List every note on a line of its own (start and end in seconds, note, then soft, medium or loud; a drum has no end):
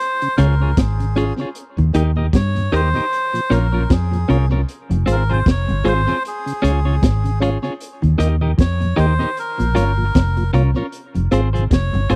0.00 0.41 C5 loud
0.21 0.29 C#3 medium
0.21 closed hi-hat medium
0.37 0.72 C#2 loud
0.37 0.61 C#3 medium
0.37 0.47 G#3 medium
0.37 0.54 C#4 medium
0.37 0.47 C#4 medium
0.37 0.47 F4 medium
0.37 0.54 F4 loud
0.37 0.54 G#4 loud
0.37 0.78 A#4 medium
0.37 0.54 C#5 loud
0.37 closed hi-hat medium
0.60 0.67 C#3 medium
0.60 0.71 C#4 medium
0.60 0.70 F4 medium
0.60 0.70 G#4 medium
0.60 0.70 C#5 medium
0.77 1.31 G#1 medium
0.77 1.00 G#2 medium
0.77 1.35 G#4 medium
0.77 kick loud
0.77 snare loud
0.77 closed hi-hat loud
1.00 1.06 C#3 medium
1.00 closed hi-hat medium
1.15 1.25 G#3 medium
1.15 1.25 C#4 medium
1.15 1.32 C#4 medium
1.15 1.25 F4 medium
1.15 1.32 F4 medium
1.15 1.32 G#4 medium
1.15 1.32 C#5 medium
1.15 closed hi-hat medium
1.38 1.45 C#3 medium
1.38 1.49 C#4 soft
1.38 1.49 F4 soft
1.38 1.49 G#4 medium
1.38 1.48 C#5 medium
1.38 closed hi-hat soft
1.55 closed hi-hat medium
1.77 1.84 D#2 medium
1.77 1.93 D#2 loud
1.77 1.84 A#2 medium
1.77 1.88 D#3 medium
1.77 closed hi-hat soft
1.93 2.28 D#2 medium
1.93 2.18 D#3 medium
1.93 2.03 A#3 medium
1.93 2.03 D#4 medium
1.93 2.10 D#4 medium
1.93 2.03 G4 medium
1.93 2.10 G4 medium
1.93 2.11 A#4 medium
1.93 2.11 D#5 medium
1.93 closed hi-hat medium
2.16 2.23 D#2 medium
2.16 2.23 A#2 medium
2.16 2.26 D#4 medium
2.16 2.26 G4 medium
2.16 2.26 A#4 medium
2.16 2.26 D#5 medium
2.33 2.68 G2 medium
2.33 2.57 G3 medium
2.33 2.74 C#5 loud
2.33 kick loud
2.33 snare loud
2.33 closed hi-hat medium
2.55 2.62 D#2 medium
2.55 2.62 A#2 medium
2.55 closed hi-hat medium
2.72 2.92 D#2 medium
2.72 2.86 D#3 medium
2.72 2.81 A#3 medium
2.72 2.81 D#4 medium
2.72 2.88 D#4 medium
2.72 2.82 G4 medium
2.72 2.88 G4 loud
2.72 2.89 A#4 loud
2.72 3.54 C5 loud
2.72 2.89 D#5 loud
2.72 closed hi-hat medium
2.94 3.01 D#2 medium
2.94 3.01 A#2 medium
2.94 3.04 D#4 medium
2.94 3.04 G4 medium
2.94 3.04 A#4 medium
2.94 3.04 D#5 medium
2.94 closed hi-hat soft
3.13 closed hi-hat medium
3.33 3.40 A#2 medium
3.33 3.41 F3 medium
3.33 closed hi-hat medium
3.50 3.85 A#1 medium
3.50 3.74 A#2 medium
3.50 3.59 A#3 medium
3.50 3.60 C#4 medium
3.50 3.66 C#4 medium
3.50 3.60 F4 medium
3.50 3.66 F4 medium
3.50 3.67 A#4 loud
3.50 3.92 A#4 medium
3.50 3.67 C#5 loud
3.50 closed hi-hat medium
3.72 3.80 A#2 medium
3.72 3.80 F3 medium
3.72 3.83 C#4 medium
3.72 3.83 F4 medium
3.72 3.82 A#4 medium
3.72 3.82 C#5 medium
3.90 4.24 F2 medium
3.90 4.13 F3 medium
3.90 4.48 G#4 medium
3.90 kick loud
3.90 snare loud
3.90 closed hi-hat medium
4.11 4.19 A#2 medium
4.11 4.18 F3 medium
4.11 closed hi-hat medium
4.28 4.63 C2 medium
4.28 4.52 C3 medium
4.28 4.38 A#3 medium
4.28 4.38 C#4 medium
4.28 4.44 C#4 medium
4.28 4.38 F4 medium
4.28 4.45 F4 medium
4.28 4.45 A#4 medium
4.28 4.45 C#5 medium
4.28 closed hi-hat medium
4.51 4.58 A#2 medium
4.51 4.58 F3 medium
4.51 4.61 C#4 medium
4.51 4.61 F4 soft
4.51 4.60 A#4 medium
4.51 4.60 C#5 medium
4.69 closed hi-hat medium
4.90 5.05 F1 loud
4.90 5.00 F2 medium
4.90 4.97 F2 medium
4.90 4.97 C3 medium
4.90 closed hi-hat medium
5.06 5.41 G#1 loud
5.06 5.30 G#2 medium
5.06 5.16 G#3 medium
5.06 5.22 C4 medium
5.06 5.16 C4 medium
5.06 5.23 F4 medium
5.06 5.16 F4 medium
5.06 5.23 G#4 medium
5.06 5.23 C5 medium
5.06 closed hi-hat medium
5.12 5.32 A#4 medium
5.29 5.37 F2 medium
5.29 5.37 C3 medium
5.29 5.39 C4 medium
5.29 5.39 F4 medium
5.29 5.39 G#4 medium
5.29 5.38 C5 medium
5.29 5.48 C5 loud
5.46 5.66 F1 medium
5.46 5.59 F2 medium
5.46 kick loud
5.46 snare loud
5.46 closed hi-hat medium
5.50 5.88 C#5 loud
5.68 5.84 G1 medium
5.68 5.75 F2 medium
5.68 5.78 G2 medium
5.68 5.75 C3 medium
5.68 closed hi-hat medium
5.84 6.05 G#1 loud
5.84 5.99 G#2 medium
5.84 5.94 G#3 medium
5.84 5.94 C4 medium
5.84 6.00 C4 medium
5.84 5.94 F4 medium
5.84 6.01 F4 loud
5.84 6.01 G#4 medium
5.84 6.01 C5 medium
5.84 closed hi-hat medium
5.88 6.23 C5 loud
6.07 6.14 F2 medium
6.07 6.14 C3 medium
6.07 6.17 C4 medium
6.07 6.17 F4 medium
6.07 6.17 G#4 medium
6.07 6.16 C5 medium
6.07 closed hi-hat soft
6.25 7.39 G#4 loud
6.25 closed hi-hat medium
6.46 6.53 C#3 medium
6.46 closed hi-hat medium
6.62 6.98 C#2 medium
6.62 6.87 C#3 medium
6.62 6.72 G#3 medium
6.62 6.78 C#4 medium
6.62 6.72 C#4 medium
6.62 6.72 F4 medium
6.62 6.79 F4 medium
6.62 6.79 G#4 medium
6.62 6.79 C#5 medium
6.62 closed hi-hat medium
6.85 6.92 C#3 medium
6.85 6.95 C#4 soft
6.85 6.95 F4 medium
6.85 6.95 G#4 medium
6.85 6.94 C#5 medium
7.02 7.56 G#1 medium
7.02 7.25 G#2 medium
7.02 kick loud
7.02 snare loud
7.02 closed hi-hat medium
7.24 7.31 C#3 medium
7.24 closed hi-hat medium
7.40 7.50 G#3 medium
7.40 7.50 C#4 medium
7.40 7.57 C#4 medium
7.40 7.50 F4 medium
7.40 7.57 F4 medium
7.40 7.57 G#4 medium
7.40 7.58 C#5 medium
7.40 closed hi-hat medium
7.63 7.70 C#3 medium
7.63 7.73 C#4 medium
7.63 7.73 F4 medium
7.63 7.72 G#4 medium
7.63 7.72 C#5 medium
7.63 closed hi-hat soft
7.80 closed hi-hat medium
8.02 8.09 D#2 medium
8.02 8.18 D#2 medium
8.02 8.09 A#2 medium
8.02 8.12 D#3 medium
8.02 closed hi-hat soft
8.18 8.54 D#2 medium
8.18 8.43 D#3 medium
8.18 8.28 A#3 medium
8.18 8.34 D#4 medium
8.18 8.28 D#4 medium
8.18 8.28 G4 loud
8.18 8.35 G4 medium
8.18 8.35 A#4 medium
8.18 8.35 D#5 medium
8.18 closed hi-hat medium
8.41 8.48 D#2 medium
8.41 8.48 A#2 medium
8.41 8.51 D#4 medium
8.41 8.51 G4 medium
8.41 8.51 A#4 medium
8.41 8.51 D#5 medium
8.58 8.93 F2 loud
8.58 8.81 F3 medium
8.58 8.99 C#5 loud
8.58 kick loud
8.58 snare loud
8.58 closed hi-hat medium
8.81 8.88 D#2 medium
8.81 8.88 A#2 medium
8.81 closed hi-hat medium
8.96 9.18 D#2 medium
8.96 9.11 D#3 medium
8.96 9.06 A#3 medium
8.96 9.13 D#4 medium
8.96 9.06 D#4 medium
8.96 9.06 G4 loud
8.96 9.13 G4 medium
8.96 9.13 A#4 medium
8.96 9.38 C5 loud
8.96 9.13 D#5 medium
8.96 closed hi-hat medium
9.19 9.27 D#2 medium
9.19 9.26 A#2 medium
9.19 9.29 D#4 medium
9.19 9.29 G4 medium
9.19 9.29 A#4 medium
9.19 9.29 D#5 medium
9.37 10.51 A#4 medium
9.37 closed hi-hat medium
9.58 9.74 A#1 medium
9.58 9.65 A#2 medium
9.58 9.69 A#2 medium
9.58 9.65 F3 medium
9.58 closed hi-hat medium
9.74 10.10 G1 medium
9.74 9.99 G2 medium
9.74 9.84 A#3 medium
9.74 9.91 C#4 medium
9.74 9.85 C#4 medium
9.74 9.91 F4 medium
9.74 9.85 F4 medium
9.74 9.91 A#4 medium
9.74 9.92 C#5 loud
9.74 closed hi-hat medium
9.97 10.05 A#2 medium
9.97 10.05 F3 medium
10.15 10.49 F1 medium
10.15 10.39 F2 medium
10.15 kick loud
10.15 snare loud
10.15 closed hi-hat medium
10.37 10.44 A#2 medium
10.37 10.44 F3 medium
10.37 closed hi-hat medium
10.53 10.73 C2 medium
10.53 10.67 C3 medium
10.53 10.63 A#3 medium
10.53 10.69 C#4 medium
10.53 10.63 C#4 medium
10.53 10.63 F4 medium
10.53 10.70 F4 medium
10.53 10.70 A#4 medium
10.53 10.70 C#5 medium
10.53 closed hi-hat medium
10.76 10.83 A#2 medium
10.76 10.83 F3 medium
10.76 10.86 C#4 soft
10.76 10.86 F4 soft
10.76 10.86 A#4 medium
10.76 10.85 C#5 medium
10.92 closed hi-hat medium
11.14 11.30 F1 medium
11.14 11.22 F2 medium
11.14 11.25 F2 medium
11.14 11.22 C3 medium
11.14 closed hi-hat soft
11.31 11.66 G#1 medium
11.31 11.55 G#2 medium
11.31 11.41 G#3 medium
11.31 11.41 C4 medium
11.31 11.48 C4 medium
11.31 11.41 F4 medium
11.31 11.48 F4 medium
11.31 11.48 G#4 medium
11.31 11.48 C5 loud
11.31 closed hi-hat medium
11.53 11.62 F2 medium
11.53 11.62 C3 medium
11.53 11.64 C4 medium
11.53 11.63 F4 medium
11.53 11.63 G#4 medium
11.53 11.63 C5 medium
11.53 closed hi-hat soft
11.70 11.91 F1 medium
11.70 11.84 F2 medium
11.70 12.12 C#5 loud
11.70 kick loud
11.70 snare loud
11.70 closed hi-hat medium
11.93 12.09 G1 medium
11.93 12.00 F2 medium
11.93 12.03 G2 medium
11.93 12.01 C3 medium
11.93 closed hi-hat medium
12.10 12.15 G#1 medium
12.10 12.15 G#2 medium
12.10 12.15 G#3 medium
12.10 12.15 C4 medium
12.10 12.15 F4 loud
12.10 12.15 F4 medium
12.10 12.15 G#4 loud
12.10 12.15 C5 loud
12.10 closed hi-hat medium